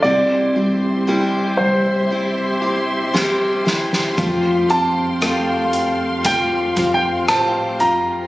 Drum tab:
HH |----------------|x-x-x-x-x-x-x-x-|
SD |------------o-oo|----r-------r---|
BD |----------------|o-------o-o-----|